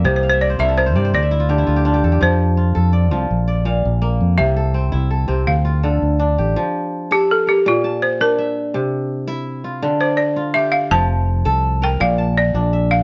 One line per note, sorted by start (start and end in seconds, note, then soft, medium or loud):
0.00 0.75 A#3 medium
0.00 0.25 D5 medium
0.00 0.29 E5 medium
0.04 0.55 C2 medium
0.04 0.94 C3 medium
0.04 0.15 C5 medium
0.16 0.28 C5 medium
0.23 0.65 F5 medium
0.29 0.40 C5 medium
0.29 1.22 E5 medium
0.41 0.95 D5 medium
0.41 0.60 D5 medium
0.50 0.86 C5 medium
0.59 0.96 C2 medium
0.59 1.31 E4 medium
0.59 0.77 A#4 medium
0.59 0.78 E5 medium
0.69 2.00 A4 medium
0.77 2.10 A#4 medium
0.77 1.15 C5 medium
0.86 1.04 C5 medium
0.95 1.12 G2 medium
0.95 1.18 C3 medium
0.95 1.13 D5 medium
1.05 2.23 C5 medium
1.13 1.64 D2 medium
1.13 2.24 D5 medium
1.13 2.00 D5 medium
1.23 1.46 E5 medium
1.31 1.58 E4 medium
1.40 1.64 F4 medium
1.49 2.27 D3 medium
1.49 1.76 G4 medium
1.58 1.91 E4 medium
1.67 2.01 D2 medium
1.67 1.85 F4 medium
1.76 1.93 G4 medium
1.85 3.53 D4 medium
1.85 2.57 F4 medium
1.94 2.12 G4 medium
2.04 2.21 E2 medium
2.04 2.74 A4 medium
2.12 3.53 G4 medium
2.21 2.73 F2 medium
2.21 3.10 F3 medium
2.21 4.46 C5 medium
2.57 3.11 F4 medium
2.75 3.13 F2 medium
2.75 3.71 A4 medium
2.93 3.47 D5 medium
3.11 3.30 C2 medium
3.11 3.36 F3 medium
3.11 4.63 F4 medium
3.31 3.81 A#1 medium
3.48 4.58 D5 medium
3.65 4.44 A#2 medium
3.65 4.65 F5 medium
3.85 4.19 A#1 medium
4.02 4.62 A#3 medium
4.21 4.38 F2 medium
4.38 4.90 C2 medium
4.38 5.27 C3 medium
4.38 5.51 E5 medium
4.56 5.10 A4 medium
4.74 5.28 C4 medium
4.92 5.27 C2 medium
4.92 5.71 E4 medium
5.10 5.83 A4 medium
5.28 5.46 C2 medium
5.28 5.53 C3 medium
5.28 7.08 C4 medium
5.47 5.98 D2 medium
5.47 6.16 F5 medium
5.65 7.16 F4 medium
5.83 6.62 D3 medium
5.83 7.11 A4 medium
6.02 6.36 D2 medium
6.19 7.87 D4 medium
6.38 6.56 A1 medium
6.38 7.80 G4 medium
6.56 7.71 F3 medium
7.11 7.29 G4 medium
7.11 7.53 A4 medium
7.31 7.49 A4 medium
7.47 7.57 G4 medium
7.47 7.90 A#4 medium
7.66 8.79 A#2 medium
7.66 8.01 F4 medium
7.84 8.71 A5 medium
8.02 8.19 C5 medium
8.21 9.88 D4 medium
8.21 8.71 A#4 medium
8.38 9.42 E5 medium
8.74 9.88 C3 medium
9.28 10.42 E4 medium
9.64 10.36 F4 medium
9.82 10.97 D3 medium
10.00 10.18 C5 medium
10.00 11.11 D5 medium
10.17 10.56 D5 medium
10.36 11.88 F4 medium
10.54 11.97 G4 medium
10.54 10.73 E5 medium
10.72 10.89 F5 medium
10.91 11.42 F1 medium
10.91 12.06 F3 medium
10.91 11.42 A5 loud
11.45 11.97 C2 loud
11.45 11.88 A4 medium
11.82 12.24 A#4 medium
11.82 12.02 G5 medium
12.00 12.52 A#1 loud
12.00 13.03 A#2 medium
12.00 12.34 F5 medium
12.18 13.03 A5 medium
12.38 12.71 D5 medium
12.54 13.03 A#1 loud
12.54 13.03 D4 medium
12.73 13.03 E5 medium
12.91 13.03 F5 medium